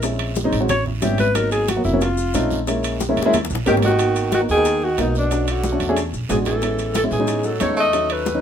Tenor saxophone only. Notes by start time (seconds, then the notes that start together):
3.68 D#3
3.84 D#3
4.33 D#3
4.51 D#3
4.83 D#3
5.00 B2
5.17 B2
5.49 D3
6.29 E3
6.46 E3
6.95 E3
7.10 E3
7.44 F#3
7.60 A3
7.76 A3
8.10 A3